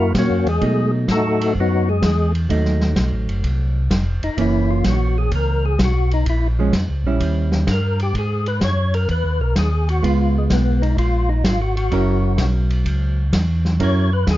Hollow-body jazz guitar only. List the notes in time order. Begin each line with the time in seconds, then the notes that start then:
0.61 F#3 A3 D#4
2.49 F#3 A3 D#4
4.38 E3 A#3 C#4
6.59 F3 G#3 C#4
7.07 G3 C#4 E4
10.02 G#3 B3 F4
11.91 F#3 C#4 E4 A#4
13.80 F#3 C#4 E4 A#4